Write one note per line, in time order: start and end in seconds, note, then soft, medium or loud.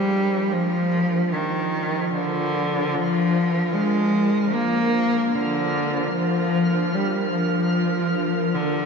0.00 8.86 F3 medium
0.00 0.53 G3 loud
0.00 8.86 D4 medium
0.00 8.86 F4 medium
0.00 8.86 A#4 medium
0.00 8.86 C5 medium
0.00 8.86 F6 medium
0.52 1.35 F3 loud
1.33 2.13 D#3 medium
2.15 2.97 D3 medium
2.95 3.75 F3 loud
3.74 4.55 G#3 loud
4.54 5.36 A#3 medium
5.34 6.13 D3 medium
6.14 6.95 F3 medium
6.94 7.31 G3 medium
7.32 8.56 F3 medium
8.54 8.86 D3 medium